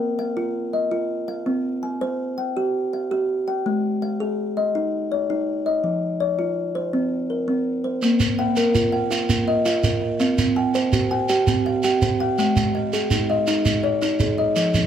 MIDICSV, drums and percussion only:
0, 0, Header, 1, 2, 480
1, 0, Start_track
1, 0, Tempo, 363857
1, 1935, Time_signature, 12, 3, 24, 8
1, 19614, End_track
2, 0, Start_track
2, 0, Title_t, "Shekere"
2, 10583, Note_on_c, 9, 82, 55
2, 10715, Note_off_c, 9, 82, 0
2, 10817, Note_on_c, 9, 82, 71
2, 10949, Note_off_c, 9, 82, 0
2, 11297, Note_on_c, 9, 82, 57
2, 11429, Note_off_c, 9, 82, 0
2, 11542, Note_on_c, 9, 82, 67
2, 11674, Note_off_c, 9, 82, 0
2, 12024, Note_on_c, 9, 82, 58
2, 12156, Note_off_c, 9, 82, 0
2, 12261, Note_on_c, 9, 82, 72
2, 12393, Note_off_c, 9, 82, 0
2, 12740, Note_on_c, 9, 82, 57
2, 12871, Note_off_c, 9, 82, 0
2, 12976, Note_on_c, 9, 82, 76
2, 13108, Note_off_c, 9, 82, 0
2, 13455, Note_on_c, 9, 82, 61
2, 13587, Note_off_c, 9, 82, 0
2, 13698, Note_on_c, 9, 82, 67
2, 13829, Note_off_c, 9, 82, 0
2, 14176, Note_on_c, 9, 82, 55
2, 14308, Note_off_c, 9, 82, 0
2, 14413, Note_on_c, 9, 82, 69
2, 14545, Note_off_c, 9, 82, 0
2, 14892, Note_on_c, 9, 82, 59
2, 15024, Note_off_c, 9, 82, 0
2, 15133, Note_on_c, 9, 82, 74
2, 15265, Note_off_c, 9, 82, 0
2, 15608, Note_on_c, 9, 82, 57
2, 15740, Note_off_c, 9, 82, 0
2, 15856, Note_on_c, 9, 82, 72
2, 15988, Note_off_c, 9, 82, 0
2, 16339, Note_on_c, 9, 82, 58
2, 16471, Note_off_c, 9, 82, 0
2, 16574, Note_on_c, 9, 82, 71
2, 16706, Note_off_c, 9, 82, 0
2, 17059, Note_on_c, 9, 82, 54
2, 17191, Note_off_c, 9, 82, 0
2, 17290, Note_on_c, 9, 82, 70
2, 17422, Note_off_c, 9, 82, 0
2, 17772, Note_on_c, 9, 82, 58
2, 17904, Note_off_c, 9, 82, 0
2, 18014, Note_on_c, 9, 82, 76
2, 18145, Note_off_c, 9, 82, 0
2, 18494, Note_on_c, 9, 82, 57
2, 18626, Note_off_c, 9, 82, 0
2, 18730, Note_on_c, 9, 82, 73
2, 18862, Note_off_c, 9, 82, 0
2, 19209, Note_on_c, 9, 82, 58
2, 19341, Note_off_c, 9, 82, 0
2, 19449, Note_on_c, 9, 82, 71
2, 19581, Note_off_c, 9, 82, 0
2, 19614, End_track
0, 0, End_of_file